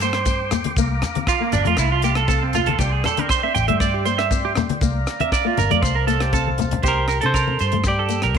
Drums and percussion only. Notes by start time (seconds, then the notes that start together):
0.00 closed hi-hat, maracas
0.13 cross-stick, closed hi-hat
0.25 kick, closed hi-hat, maracas
0.51 cross-stick, closed hi-hat, low conga, maracas
0.64 closed hi-hat, high conga
0.76 kick, closed hi-hat, maracas
1.02 cross-stick, closed hi-hat, low conga, maracas
1.15 closed hi-hat, high conga
1.27 kick, cross-stick, closed hi-hat, maracas
1.52 closed hi-hat, high conga, low conga, maracas
1.65 closed hi-hat, high conga
1.77 kick, cross-stick, closed hi-hat, maracas
2.02 closed hi-hat, maracas
2.15 cross-stick, closed hi-hat
2.28 kick, closed hi-hat, maracas
2.53 closed hi-hat, low conga, maracas
2.66 closed hi-hat, high conga
2.79 kick, closed hi-hat, maracas
3.04 cross-stick, closed hi-hat, low conga, maracas
3.17 closed hi-hat, high conga
3.29 kick, cross-stick, closed hi-hat, maracas
3.55 closed hi-hat, low conga, maracas
3.68 closed hi-hat, high conga
3.80 kick, cross-stick, closed hi-hat, maracas
4.05 closed hi-hat, maracas
4.19 cross-stick, closed hi-hat
4.31 kick, closed hi-hat, maracas
4.55 cross-stick, closed hi-hat, low conga, maracas
4.69 closed hi-hat, high conga
4.81 kick, closed hi-hat, maracas
5.07 cross-stick, closed hi-hat, maracas
5.20 closed hi-hat, high conga
5.32 kick, cross-stick, closed hi-hat, maracas
5.57 closed hi-hat, low conga, maracas
5.71 closed hi-hat, high conga
5.83 kick, cross-stick, closed hi-hat, maracas
6.08 closed hi-hat, maracas
6.20 cross-stick, closed hi-hat
6.33 kick, closed hi-hat, maracas
6.47 high conga
6.58 closed hi-hat, low conga, maracas
6.71 closed hi-hat, low conga
6.83 kick, closed hi-hat, maracas
7.08 cross-stick, closed hi-hat, maracas
7.21 closed hi-hat
7.34 kick, cross-stick, closed hi-hat, maracas
7.48 high conga
7.59 closed hi-hat, maracas
7.72 closed hi-hat, high conga
7.84 kick, cross-stick, closed hi-hat, maracas
8.09 closed hi-hat, maracas
8.22 cross-stick, closed hi-hat
8.35 kick, closed hi-hat